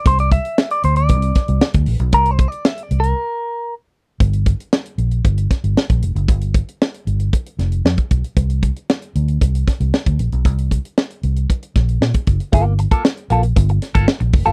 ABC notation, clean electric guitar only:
X:1
M:4/4
L:1/16
Q:1/4=116
K:Gdor
V:1 name="Clean electric guitar"
c d e3 d c d6 z3 | (3B2 c2 d2 (3e2 d2 B2- B4- B z3 | z16 | z16 |
z16 | z16 | [B,FA]2 z [B,FA] z2 [B,FA] z4 [B,FA] z3 [B,FA] |]